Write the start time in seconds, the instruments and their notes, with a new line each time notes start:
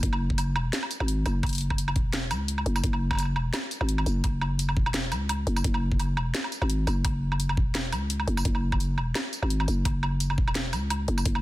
0.03 808-style bass F#1, kick, closed hi-hat
0.13 low woodblock
0.30 kick
0.38 closed hi-hat, tambourine, low woodblock
0.55 808-style bass E1, low woodblock
0.73 snare, closed hi-hat
0.83 low woodblock
0.91 closed hi-hat, tambourine
1.00 808-style bass G#1, low woodblock
1.08 closed hi-hat
1.26 808-style bass F#1, closed hi-hat, tambourine, low woodblock
1.43 kick, closed hi-hat, low woodblock
1.47 closed hi-hat
1.49 closed hi-hat
1.53 closed hi-hat
1.55 closed hi-hat
1.58 closed hi-hat
1.61 closed hi-hat
1.70 kick, low woodblock
1.78 closed hi-hat, tambourine
1.88 low woodblock
1.96 808-style bass E1, kick, closed hi-hat
2.13 snare, closed hi-hat, low woodblock
2.31 808-style bass C#2, closed hi-hat, tambourine, low woodblock
2.48 closed hi-hat
2.58 low woodblock
2.66 808-style bass F#1, closed hi-hat
2.76 tambourine, low woodblock
2.84 808-style bass F#1, kick, closed hi-hat
2.93 low woodblock
3.11 kick, low woodblock
3.13 low woodblock
3.15 low woodblock
3.17 closed hi-hat, tambourine, low woodblock
3.20 low woodblock
3.23 low woodblock
3.25 low woodblock
3.36 808-style bass E1, low woodblock
3.54 snare, closed hi-hat, low woodblock
3.71 closed hi-hat, tambourine
3.81 808-style bass G#1, low woodblock
3.89 closed hi-hat
3.98 low woodblock
4.06 808-style bass F#1, closed hi-hat, tambourine
4.24 kick, closed hi-hat, low woodblock
4.41 low woodblock
4.59 closed hi-hat, tambourine
4.69 low woodblock
4.77 808-style bass E1, kick
4.86 low woodblock
4.94 snare, closed hi-hat
5.12 808-style bass C#2, closed hi-hat, tambourine, low woodblock
5.29 closed hi-hat, low woodblock
5.47 808-style bass F#1, closed hi-hat
5.56 tambourine, low woodblock
5.64 808-style bass F#1, kick, closed hi-hat
5.74 low woodblock
5.92 kick
6.00 closed hi-hat, tambourine, low woodblock
6.17 808-style bass E1, low woodblock
6.35 snare, closed hi-hat
6.44 low woodblock
6.52 closed hi-hat, tambourine
6.62 808-style bass G#1, low woodblock
6.70 closed hi-hat
6.87 808-style bass F#1, closed hi-hat, tambourine, low woodblock
7.05 kick, closed hi-hat, low woodblock
7.32 low woodblock
7.40 closed hi-hat, tambourine
7.49 low woodblock
7.57 808-style bass E1, kick
7.75 snare, closed hi-hat, low woodblock
7.92 808-style bass C#2, closed hi-hat, tambourine, low woodblock
8.10 closed hi-hat
8.20 low woodblock
8.28 808-style bass F#1, closed hi-hat
8.37 tambourine, low woodblock
8.45 808-style bass F#1, kick, closed hi-hat
8.55 low woodblock
8.72 kick, low woodblock
8.80 closed hi-hat, tambourine
8.98 808-style bass E1, low woodblock
9.15 snare, closed hi-hat, low woodblock
9.33 closed hi-hat, tambourine
9.42 808-style bass G#1, low woodblock
9.50 closed hi-hat
9.60 low woodblock
9.68 808-style bass F#1, closed hi-hat, tambourine
9.85 kick, closed hi-hat, low woodblock
10.03 low woodblock
10.20 closed hi-hat, tambourine
10.30 low woodblock
10.38 808-style bass E1, kick
10.48 low woodblock
10.55 snare, closed hi-hat
10.73 808-style bass C#2, closed hi-hat, tambourine, low woodblock
10.90 closed hi-hat, low woodblock
11.08 808-style bass F#1, closed hi-hat
11.18 tambourine, low woodblock
11.25 808-style bass F#1, kick, closed hi-hat
11.35 low woodblock